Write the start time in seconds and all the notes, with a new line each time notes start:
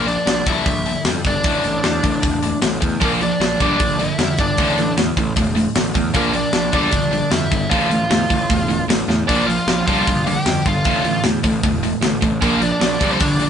Already playing: A#1
0.07 A#2 F3 D4 D5, open hi-hat
0.26 A#1 A#2 F3, snare, open hi-hat
0.46 A#1 G2 D3 G3 E4 E5, kick, open hi-hat
0.66 A#1 G2 D3, kick, open hi-hat
0.86 G2 D3, open hi-hat
1.05 F2 G2 D3, snare, open hi-hat
1.25 G1 G2 D3 D4 D5, kick, open hi-hat
1.44 A1 D2 A2 D3, kick, open hi-hat
1.64 A1 D2 A2, open hi-hat
1.84 D2 E2 A2, snare, open hi-hat
2.03 A1 D2 A2, kick, open hi-hat
2.22 E1 D2 A2, kick, open hi-hat
2.43 D2 A2, open hi-hat
2.61 A1 D2 A2, snare, open hi-hat
2.80 D2 E2 A2, kick, open hi-hat
3.00 A#1 A#2 F3 A#3, kick, open hi-hat
3.05 A#3 A#4
3.21 A#2 F3 D4 D5, open hi-hat
3.40 A#1 A#2 F3, snare, open hi-hat
3.60 A#1 G2 D3 G3 D4 D5, kick, open hi-hat
3.79 A#1 G2 D3, kick, open hi-hat
3.99 G2 D3 E4 E5, open hi-hat
4.18 F2 G2 D3, snare, open hi-hat
4.37 G1 G2 D3 D4 D5, kick, open hi-hat
4.57 A1 D2 A2 D3, kick, open hi-hat
4.77 A1 D2 A2, open hi-hat
4.96 D2 E2 A2, snare, open hi-hat
5.17 A1 D2 A2, kick, open hi-hat
5.36 E1 D2 A2, kick, open hi-hat
5.55 D2 A2, open hi-hat
5.75 A1 D2 A2, snare, open hi-hat
5.94 D2 E2 A2, kick, open hi-hat
6.14 A#1 A#2 F3 A#3 A#4, kick, open hi-hat
6.33 A#2 F3 D4 D5, open hi-hat
6.53 A#1 A#2 F3, snare, open hi-hat
6.72 A#1 G2 D3 G3 D4 D5, kick, open hi-hat
6.91 A#1 G2 D3, kick, open hi-hat
7.11 G2 D3, open hi-hat
7.31 F2 G2 D3 E4 E5, snare, open hi-hat
7.51 G1 G2 D3, kick, open hi-hat
7.70 A1 D2 A2 D3 F4 F5, kick, open hi-hat
7.90 A1 D2 A2, open hi-hat
8.10 D2 E2 A2, snare, open hi-hat
8.30 A1 D2 A2, kick, open hi-hat
8.50 E1 D2 A2, kick, open hi-hat
8.69 D2 A2, open hi-hat
8.88 A1 D2 A2, snare, open hi-hat
9.08 D2 E2 A2, snare
9.28 A#1 A#2 F3 A#3 D4 D5, kick, open hi-hat
9.46 A#2 F3 F4 F5, open hi-hat
9.67 A#1 A#2 F3, snare, open hi-hat
9.87 A#1 G2 D3 G3 F4 F5, kick, open hi-hat
10.07 A#1 G2 D3, kick, open hi-hat
10.26 G2 D3 G4 G5, open hi-hat
10.46 F2 G2 D3, snare, open hi-hat
10.66 G1 G2 D3 F4 F5, kick, open hi-hat
10.84 A1 D2 A2 D3, kick, open hi-hat
11.04 A1 D2 A2, open hi-hat
11.23 D2 E2 A2, snare, open hi-hat
11.43 A1 D2 A2, kick, open hi-hat
11.63 E1 D2 A2, kick, open hi-hat
11.83 D2 A2, open hi-hat
12.01 A1 D2 A2, snare, open hi-hat
12.22 A1 D2 A2, kick, open hi-hat
12.42 A#1 A#2 F3 A#3 A#4, kick, open hi-hat
12.62 A#2 F3 D4 D5, open hi-hat
12.71 D4 D5
12.81 A#1 A#2 F3, snare, open hi-hat
13.00 A#1 G2 D3 G3, kick, open hi-hat
13.11 C4 C5
13.20 A#1 G2 D3 D4 D5, kick, open hi-hat
13.40 G2 D3, open hi-hat